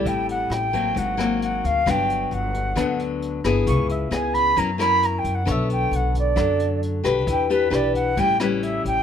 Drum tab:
HH |xxxxxxxx|xxxxxxxx|xxxxxxxx|xxxxxxxx|
SD |--r--r--|r---r--r|--r--r--|r---r--r|
BD |o--oo--o|o--oo--o|o--oo--o|o--oo--o|

HH |xxxxxxxx|
SD |--r--r--|
BD |o--oo--o|